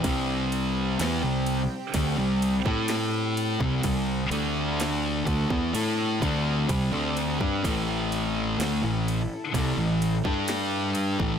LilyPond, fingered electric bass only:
\new Staff \with { instrumentName = "Fingered electric bass" } { \clef bass \time 4/4 \key c \lydian \tempo 4 = 63 c,4 e,16 c,8 r16 d,16 c,8 a,4 c,16 | c,8 d,4 d,16 e,16 a,8 d,8 c,16 d,8 g,16 | a,,4 d,16 a,,8 r16 c,16 a,,8 g,4 a,,16 | }